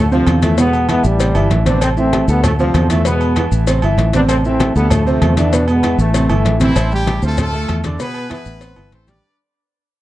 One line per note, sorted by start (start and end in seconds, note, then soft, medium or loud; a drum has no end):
0.00 0.24 D2 loud
0.12 0.37 C3 loud
0.12 0.41 D3 medium
0.12 0.41 F3 medium
0.12 0.37 C4 loud
0.12 0.37 C5 loud
0.12 high conga soft
0.12 maracas soft
0.27 0.99 E2 medium
0.27 cowbell medium
0.27 high conga medium
0.27 low agogo loud
0.27 maracas soft
0.42 0.55 E3 medium
0.42 0.58 F3 medium
0.42 0.58 A3 loud
0.42 0.55 E4 medium
0.42 0.55 E5 medium
0.42 cowbell medium
0.42 high conga medium
0.42 low agogo medium
0.42 maracas medium
0.58 0.83 B2 medium
0.58 0.87 G#3 medium
0.58 0.83 B3 medium
0.58 0.87 B3 loud
0.58 0.83 B4 medium
0.58 cowbell loud
0.58 maracas medium
0.73 high conga soft
0.73 low agogo medium
0.73 maracas soft
0.88 1.14 E3 medium
0.88 1.04 G#3 medium
0.88 1.04 B3 loud
0.88 1.14 E4 medium
0.88 1.14 E5 medium
0.88 cowbell medium
0.88 high conga medium
0.88 low agogo loud
0.88 maracas soft
1.04 1.33 A1 loud
1.04 1.52 E3 medium
1.04 1.51 G3 loud
1.04 high conga soft
1.04 maracas medium
1.20 1.33 C3 medium
1.20 1.33 C4 medium
1.20 1.33 C5 medium
1.20 cowbell loud
1.20 high conga soft
1.20 low agogo medium
1.20 maracas loud
1.35 1.50 G1 medium
1.35 1.60 E3 medium
1.35 1.61 E4 medium
1.35 1.61 E5 medium
1.35 high conga soft
1.35 low agogo loud
1.35 maracas soft
1.50 2.23 A1 medium
1.50 cowbell medium
1.50 high conga soft
1.50 low timbale medium
1.50 maracas soft
1.66 1.91 C3 loud
1.66 1.82 B3 medium
1.66 1.91 C4 loud
1.66 1.81 D4 loud
1.66 1.92 C5 medium
1.66 cowbell medium
1.66 high conga medium
1.66 maracas medium
1.81 1.90 A3 medium
1.81 1.90 C4 loud
1.81 cowbell loud
1.81 high conga soft
1.81 low agogo loud
1.81 maracas medium
1.97 2.23 E3 medium
1.97 2.28 A3 medium
1.97 2.27 C4 loud
1.97 2.23 E4 medium
1.97 2.23 E5 medium
1.97 high conga soft
1.97 maracas soft
2.13 cowbell medium
2.13 high conga loud
2.13 low agogo medium
2.13 maracas soft
2.28 2.71 D2 loud
2.28 2.43 G3 medium
2.28 2.54 A3 medium
2.28 2.43 B3 loud
2.28 2.54 A4 medium
2.28 2.54 A5 medium
2.28 maracas medium
2.44 2.52 F3 medium
2.44 2.51 A3 medium
2.44 cowbell loud
2.44 high conga soft
2.44 low conga medium
2.44 low agogo loud
2.44 maracas medium
2.59 2.85 C3 medium
2.59 2.89 D3 medium
2.59 2.88 F3 medium
2.59 2.85 C4 loud
2.59 2.85 C5 loud
2.59 high conga soft
2.59 maracas soft
2.74 3.46 E2 medium
2.74 cowbell medium
2.74 high conga medium
2.74 low timbale medium
2.74 low agogo loud
2.74 maracas soft
2.90 3.03 E3 medium
2.90 3.06 F3 medium
2.90 3.05 A3 medium
2.90 3.03 E4 medium
2.90 3.03 E5 medium
2.90 cowbell medium
2.90 high conga medium
2.90 low agogo medium
2.90 maracas medium
3.05 3.31 B2 medium
3.05 3.35 G#3 medium
3.05 3.31 B3 medium
3.05 3.35 B3 loud
3.05 3.31 B4 medium
3.05 cowbell loud
3.05 high conga soft
3.05 maracas loud
3.21 high conga soft
3.21 low agogo medium
3.21 maracas soft
3.36 3.62 E3 medium
3.36 3.45 G#3 medium
3.36 3.44 B3 medium
3.36 3.62 E4 medium
3.36 3.62 E5 medium
3.36 cowbell medium
3.36 high conga medium
3.36 low agogo loud
3.36 maracas soft
3.52 3.80 A1 loud
3.52 maracas medium
3.67 3.80 C3 medium
3.67 3.80 C4 medium
3.67 3.80 C5 medium
3.67 cowbell loud
3.67 high conga soft
3.67 low agogo medium
3.67 maracas loud
3.82 3.97 G1 medium
3.82 4.08 E3 medium
3.82 4.09 E4 medium
3.82 4.09 E5 medium
3.82 high conga soft
3.82 low agogo loud
3.82 maracas soft
3.98 4.70 A1 loud
3.98 cowbell medium
3.98 high conga soft
3.98 low timbale medium
3.98 maracas soft
4.13 4.39 C3 loud
4.13 4.22 B3 medium
4.13 4.39 C4 medium
4.13 4.22 D4 loud
4.13 4.39 C5 loud
4.13 cowbell medium
4.13 high conga medium
4.13 maracas medium
4.29 4.37 A3 medium
4.29 4.36 C4 loud
4.29 cowbell loud
4.29 high conga soft
4.29 low agogo loud
4.29 maracas loud
4.45 4.70 E3 medium
4.45 4.74 A3 medium
4.45 4.74 C4 loud
4.45 4.71 E4 medium
4.45 4.71 E5 medium
4.45 high conga soft
4.45 maracas soft
4.60 cowbell medium
4.60 high conga loud
4.60 low agogo medium
4.60 maracas soft
4.76 5.19 D2 loud
4.76 4.91 G3 medium
4.76 5.01 A3 medium
4.76 4.90 B3 loud
4.76 5.01 A4 medium
4.76 5.01 A5 medium
4.76 maracas medium
4.90 5.06 F3 medium
4.90 5.05 A3 medium
4.90 cowbell loud
4.90 high conga soft
4.90 low conga medium
4.90 low agogo loud
4.90 maracas loud
5.06 5.32 C3 medium
5.06 5.36 F3 medium
5.06 5.35 A3 medium
5.06 5.32 C4 loud
5.06 5.32 C5 loud
5.06 high conga soft
5.06 maracas soft
5.22 5.93 E2 loud
5.22 cowbell medium
5.22 high conga medium
5.22 low timbale medium
5.22 low agogo loud
5.22 maracas soft
5.37 5.50 E3 medium
5.37 5.67 B3 medium
5.37 5.68 D4 loud
5.37 5.50 E4 medium
5.37 5.50 E5 medium
5.37 cowbell medium
5.37 high conga medium
5.37 low agogo medium
5.37 maracas medium
5.52 5.78 B2 medium
5.52 5.78 B3 medium
5.52 5.78 B4 medium
5.52 cowbell loud
5.52 high conga soft
5.52 maracas loud
5.68 5.97 G#3 medium
5.68 5.97 B3 medium
5.68 high conga soft
5.68 low agogo medium
5.68 maracas soft
5.83 6.09 E3 medium
5.83 6.09 E4 medium
5.83 6.09 E5 medium
5.83 cowbell medium
5.83 high conga medium
5.83 low agogo loud
5.83 maracas soft
5.98 6.27 A1 loud
5.98 6.58 E3 medium
5.98 6.57 A3 medium
5.98 high conga soft
5.98 maracas medium
6.14 6.27 C3 medium
6.14 6.27 C4 medium
6.14 6.27 C5 medium
6.14 cowbell loud
6.14 high conga soft
6.14 low agogo medium
6.14 maracas loud
6.30 6.44 G1 medium
6.30 6.55 E3 medium
6.30 6.55 E4 medium
6.30 6.55 E5 medium
6.30 high conga soft
6.30 low agogo loud
6.30 maracas soft
6.45 6.73 A1 medium
6.45 cowbell medium
6.45 high conga soft
6.45 low timbale medium
6.45 maracas soft
6.60 6.73 C3 medium
6.60 6.90 E3 medium
6.60 6.73 C4 medium
6.60 6.90 C4 medium
6.60 6.90 E4 medium
6.60 6.73 C5 medium
6.60 cowbell medium
6.60 high conga medium
6.60 maracas medium
6.76 7.19 A1 loud
6.76 6.89 C4 medium
6.76 6.89 C5 medium
6.76 6.89 C6 medium
6.76 cowbell loud
6.76 high conga soft
6.76 low agogo loud
6.76 maracas medium
6.91 7.17 G3 medium
6.91 7.21 G3 medium
6.91 7.21 E4 medium
6.91 7.17 G4 medium
6.91 7.21 G4 medium
6.91 7.17 G5 medium
6.91 high conga soft
6.91 maracas soft
7.07 cowbell medium
7.07 high conga loud
7.07 low agogo medium
7.07 maracas soft
7.22 7.66 D2 loud
7.22 7.38 A3 medium
7.22 7.48 C4 medium
7.22 7.38 F4 medium
7.22 7.38 A4 loud
7.22 7.48 C5 medium
7.22 7.48 C6 medium
7.22 maracas medium
7.37 7.82 A3 medium
7.37 7.82 F4 medium
7.37 7.82 A4 loud
7.37 cowbell loud
7.37 high conga soft
7.37 low conga medium
7.37 low agogo loud
7.37 maracas loud
7.53 7.79 A3 medium
7.53 7.79 A4 medium
7.53 7.79 A5 medium
7.53 high conga soft
7.53 maracas soft
7.68 7.96 E2 loud
7.68 cowbell medium
7.68 high conga medium
7.68 low agogo loud
7.68 maracas soft
7.84 7.97 D3 medium
7.84 7.97 D4 medium
7.84 7.97 D5 medium
7.84 cowbell medium
7.84 high conga medium
7.84 low agogo medium
7.84 maracas medium
7.99 8.25 B2 medium
7.99 8.25 B3 medium
7.99 8.29 B3 medium
7.99 8.30 G#4 medium
7.99 8.25 B4 medium
7.99 8.29 B4 loud
7.99 cowbell loud
7.99 high conga soft
7.99 maracas medium
8.14 high conga soft
8.14 low agogo medium
8.14 maracas soft
8.30 8.55 E3 medium
8.30 8.89 B3 medium
8.30 8.56 E4 medium
8.30 8.60 G#4 medium
8.30 8.89 B4 loud
8.30 8.56 E5 medium
8.30 cowbell medium
8.30 high conga medium
8.30 low agogo loud
8.30 maracas soft
8.45 8.75 A1 loud
8.45 high conga soft
8.45 maracas medium
8.61 8.74 C4 medium
8.61 8.74 C5 medium
8.61 8.74 C6 medium
8.61 cowbell loud
8.61 high conga soft
8.61 low agogo medium
8.61 maracas loud
8.76 8.92 G1 medium
8.76 9.02 E3 medium
8.76 9.02 E4 medium
8.76 9.02 E5 medium
8.76 high conga soft
8.76 low agogo loud
8.76 maracas soft
8.92 9.20 A1 medium
8.92 9.08 C4 medium
8.92 9.09 A4 medium
8.92 9.08 C5 loud
8.92 cowbell medium
8.92 high conga soft
8.92 maracas soft
9.07 9.20 G3 medium
9.07 9.39 D4 loud
9.07 9.20 G4 medium
9.07 9.39 B4 medium
9.07 9.39 D5 loud
9.07 9.20 G5 medium
9.07 cowbell medium
9.07 high conga medium
9.07 maracas medium